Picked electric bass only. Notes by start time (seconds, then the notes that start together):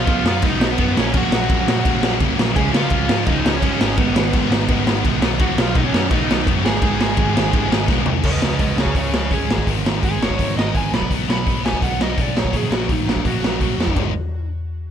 0.07 B1
0.25 F#2
0.42 B1
0.78 F#2
0.97 A#1
1.14 A#1
1.31 A#1
1.50 A#1
1.68 A#1
1.86 A#1
2.03 A#1
2.20 C#2
2.38 A#1
2.55 C#2
2.74 C#2
2.91 C#2
3.09 G#2
3.26 C#2
3.62 G#2
3.81 G#1
3.98 G#1
4.15 G#1
4.33 G#1
4.50 G#1
4.69 G#1
4.87 G#1
5.05 B1
5.24 B1
5.39 B1
5.58 B1
5.75 B1
5.93 F#2
6.11 B1
6.46 F#2
6.65 G#1
6.82 G#1
6.99 G#1
7.17 G#1
7.36 G#1
7.53 G#1
7.71 G#1
7.89 B1
8.07 C2
8.25 C#2
8.42 C#2
8.59 C#2
8.78 C#2
8.95 C#2
9.31 C#2
9.48 G#1
9.67 G#1
9.85 G#1
10.03 G#1
10.20 G#1
10.39 G#1
10.56 G#1
10.75 G#1
10.92 B1
11.11 B1
11.28 B1
11.47 B1
11.65 B1
11.82 B1
12.17 B1
12.35 A#1
12.53 A#1
12.71 A#1
12.89 A#1
13.06 A#1
13.25 A#1
13.42 A#1
13.61 A#1
13.77 F2
13.97 G#1